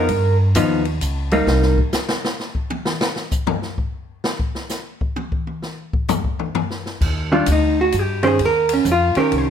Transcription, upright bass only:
0.09 G2
0.55 D#2
1.01 C#2
1.47 C2
7.01 D#2
7.47 D2
7.94 G2
8.39 D#2
8.85 F2
9.16 muted upright bass stroke
9.32 C2

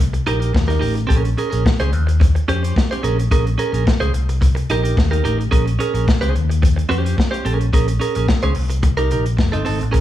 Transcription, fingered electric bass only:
Already playing: C2
0.27 A#1
0.55 D#2
0.82 A1
1.10 A#1
1.53 A#1
1.80 C#2
1.93 D#2
2.48 F2
3.04 A#1
3.32 A#1
3.73 A#1
4.01 C#2
4.14 C2
4.70 A#1
4.98 D#2
5.25 A1
5.52 A#1
5.94 A#1
6.21 C#2
6.35 D#2
6.90 F2
7.45 A#1
7.74 A#1
8.16 A#1
8.43 C#2
8.57 C2
9.12 A#1
9.39 F1
9.55 G1
9.68 G#1
9.82 A1
9.94 A#1

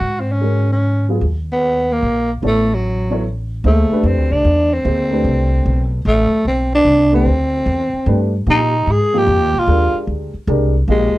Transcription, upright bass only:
0.01 G#2
1.21 D#2
2.03 A#1
2.42 A1
3.64 D2
3.90 muted upright bass stroke
4.03 F2
4.17 D2
4.31 C2
4.45 E2
4.85 D2
5.24 C2
5.66 B1
6.05 A1
6.32 muted upright bass stroke
6.45 B1
6.85 C2
7.26 D2
7.66 E2
7.93 muted upright bass stroke
8.06 G2
8.47 A#2
8.87 G#2
9.27 F2
9.41 D#2
9.54 A#1
9.67 D#2
9.94 muted upright bass stroke
10.07 D2
10.34 muted upright bass stroke
10.47 C2
10.88 A#1
11.14 muted upright bass stroke

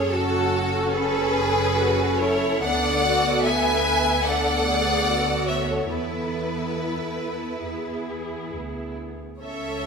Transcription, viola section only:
0.11 C#4 A4
2.64 B3 A4
4.26 B3 A4
5.91 B3 A4
7.65 B3 G#4
9.42 C#4 A4

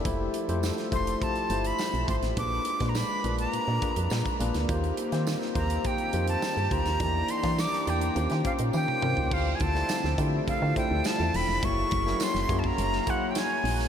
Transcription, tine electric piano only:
0.05 A3 E4 F4 G4 C5
0.48 A3 E4 F4 G4 C5
0.92 A3 E4 F4 G4 C5
1.50 A3 E4 F4 G4 C5
2.08 A3 E4 F4 G4 C5
2.37 A#3 D4 F4 G#4 B4
2.81 A#3 D4 F4 G#4 B4
3.24 A#3 D4 F4 G#4 B4
3.82 A#3 D4 F4 G#4 B4
4.39 A#3 D4 F4 G#4 B4
4.69 A#3 D#4 F4 G4 C5
5.12 A#3 D#4 F4 G4 C5
5.55 A#3 D#4 F4 G4 C5
6.13 A#3 D#4 F4 G4 C5
6.70 A#3 D#4 F4 G4 C5
6.99 A#3 D4 E4 G4 D5
7.43 A#3 D4 E4 G4 D5
7.86 A#3 D4 E4 G4 D5
8.15 A#3 C#4 F4 G4 C5
8.44 A#3 C#4 F4 G4 C5
9.02 A#3 C#4 F4 G4 C5
9.31 A3 D4 E4 F4 C5
9.74 A3 D4 E4 F4 C5
10.18 A3 D4 E4 F4 G4
10.76 A3 D4 E4 F4 C5
11.62 A#3 E4 F#4 G#4 C#5
12.06 A#3 E4 F#4 G#4 C#5
12.49 A#3 E4 F#4 G#4 C#5
13.07 A#3 E4 F#4 G#4 C#5

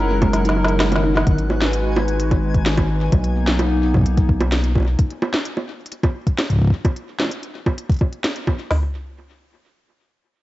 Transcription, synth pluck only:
0.10 G#3
0.22 G#3
0.34 D#3
0.45 D#4
0.57 D#4
0.69 G#3
0.80 G#3
0.92 D#3
1.03 D#4
1.15 D#4

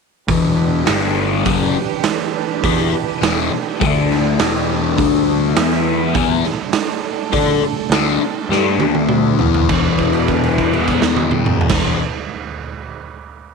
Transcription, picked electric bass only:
0.28 E1
0.89 G1
1.45 F#1
2.63 E2
2.92 muted picked electric bass stroke
3.22 E1
3.52 muted picked electric bass stroke
3.81 D2
4.40 E1
4.98 D2
5.57 E2
6.15 E2
7.33 D3
7.61 muted picked electric bass stroke
7.90 D2
8.20 muted picked electric bass stroke
8.49 G2
8.78 D2
9.39 E2
9.69 E1
11.70 E1

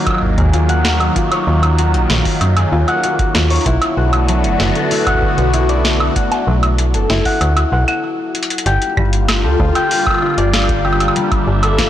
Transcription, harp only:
Already playing: F#3 F#4 C#5
0.38 G#4
0.54 F4
0.69 F#5
0.85 F#4
1.00 F#4
1.16 F4
1.32 C#5
1.47 F4
1.79 F#4
2.10 F#3
2.57 G#4
2.72 F4
2.88 F#5
3.04 F#4
3.19 F#4
3.35 F4
3.50 C#5
3.66 E4
3.97 F#4
4.29 F#3
4.75 A4
4.91 E4
5.07 F#5
5.22 F#4
5.38 F#4
5.54 E4
5.69 D5
5.85 E4
6.16 F#4
6.47 F#3
6.94 A4
7.10 E4
7.25 F#5
7.41 F#4
7.57 F#4
7.72 F#5
7.88 F#5
8.66 G4
8.97 G3
9.44 A4
9.60 F4
9.75 G5
9.91 G4
10.07 G4
10.22 F4
10.38 D5
10.54 F4
10.85 G4
11.16 G3
11.63 A4
11.79 F4

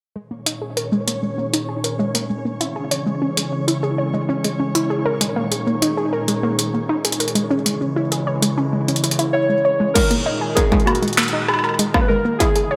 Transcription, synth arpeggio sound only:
0.16 G#3
0.31 A#3
0.46 D#4
0.62 G#4
0.77 A#4
0.92 G#3
1.07 A#3
1.23 G#3
1.38 A#3
1.53 D#4
1.69 G#4
1.84 A#4
1.99 G#3
2.15 A#3
2.30 G#3
2.45 A#3
2.61 E4
2.76 G#4
2.91 C#5
3.06 G#3
3.22 C#4
3.37 G#3
3.52 C#4
3.68 E4
3.83 G#4
3.98 C#5
4.14 G#3
4.29 C#4
4.44 G#3
4.60 C#4
4.75 E4
4.90 G#4
5.06 A#4
5.21 G#3
5.36 A#3
5.51 G#3
5.67 A#3
5.82 D#4
5.97 G#4
6.13 A#4
6.28 G#3
6.43 A#3
6.59 G#3
6.74 A#3
6.89 D#4
7.05 G#4
7.20 A#4
7.35 G#3
7.50 C#4
7.66 G#3
7.81 C#4
7.96 E4
8.12 G#4
8.27 C#5
8.42 G#3
8.58 C#4
8.73 G#3
8.88 C#4
9.04 E4
9.19 E4
9.34 E4
9.49 G#3
9.65 C#5
9.80 G#3
9.95 G#3
10.11 A#3
10.26 D#4
10.41 G#4
10.57 A#4
10.72 G#3
10.87 A#3
11.02 G#3
11.18 A#3
11.33 D#4
11.48 G#4
11.64 A#4
11.79 G#3
11.94 A#3
12.10 G#3
12.25 A#3
12.40 E4
12.56 G#4
12.71 C#5

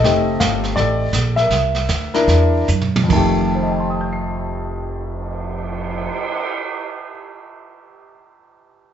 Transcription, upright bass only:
0.04 F1
0.41 G1
0.77 A1
1.13 A#1
1.50 C2
1.89 D2
2.28 E2
2.69 F#2
3.10 F1

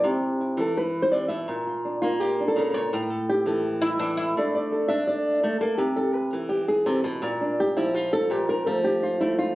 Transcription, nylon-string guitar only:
0.04 C3 E4 G4
0.41 E4
0.57 E3 A4
0.77 B4
1.02 C5
1.12 C3 D5
1.28 B2 E5
1.48 A#2
1.67 F4
1.85 D4
2.02 A#3 F4
2.20 G4
2.40 D4
2.48 A4
2.56 C#3 A#4
2.74 A#2 C#5
2.93 A2 A#4
3.10 A4
3.29 G4
3.46 E3 A4
3.83 E4
4.00 E3
4.37 A3 D4 A4 D5
4.54 D5
4.72 A4
4.88 D4 E5
5.07 D5
5.43 A3
5.61 A#3 A4
5.78 C3 G4
5.96 A4
6.14 B4
6.33 E3 A4
6.49 G4
6.68 G#4
6.86 C3 A4
7.04 B2 B4
7.22 A#2 A#4
7.41 D4
7.60 G4
7.77 F3 E4
7.94 F4
8.13 A4
8.30 A#2 G4
8.49 A#4
8.66 F3 A3 A4
8.84 G4
9.03 F4
9.21 A3 E4
9.39 F4

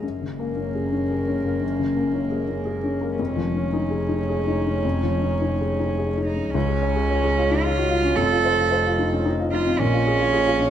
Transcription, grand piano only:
0.03 F#2
0.21 C#3
0.39 A#3
0.57 C#4
0.75 G#4
0.92 C#4
1.10 G#4
1.28 C#4
1.44 A#3
1.61 F#2
1.79 C#3
1.96 A#3
2.14 C#4
2.31 G#4
2.48 C#4
2.65 G#4
2.84 C#4
3.01 A#3
3.19 F2
3.36 F3
3.55 C#4
3.73 D#4
3.90 G#4
4.09 D#4
4.29 G#4
4.47 D#4
4.66 C#4
4.84 F2
5.03 F3
5.22 C#4
5.41 D#4
5.61 G#4
5.80 D#4
5.98 G#4
6.17 D#4
6.36 C#4
6.54 C#2
6.68 G#4
6.82 C#5
6.95 G#4
7.10 C#5
7.24 G#4
7.38 F4
7.51 D#4
7.64 F4
7.78 F#4
7.90 F4
8.05 C#4
8.18 F2
8.32 F4
8.45 C5
8.59 F4
8.72 C5
8.86 F4
8.99 D#4
9.13 C#4
9.25 D#4
9.39 F4
9.52 D#4
9.66 C4
9.79 A#2
9.93 F4
10.07 G#4
10.19 F4
10.33 G#4
10.47 F4
10.60 C#4

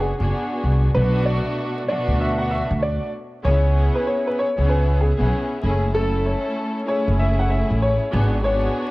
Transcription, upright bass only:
Already playing: F#1
0.20 F#1
0.64 C2
0.95 B1
2.08 D2
2.71 D2
3.45 C#2
4.58 C#2
5.20 B1
5.64 F#1
7.08 F#1
7.70 A1
8.13 G#1

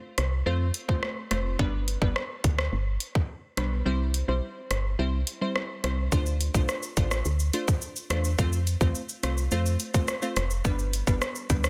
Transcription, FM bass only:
0.18 C2
0.46 F2
1.31 F1
1.59 G1
2.02 G1
2.44 D2
2.72 G1
3.57 B1
3.86 C2
4.28 B1
4.71 G1
4.99 C2
5.84 C2
6.12 D2
6.55 C2
6.97 A1
7.25 D2
8.10 E2
8.39 F2
8.81 E2
9.23 C2
9.52 F2
10.37 F1
10.65 G1
11.07 G1
11.50 D2

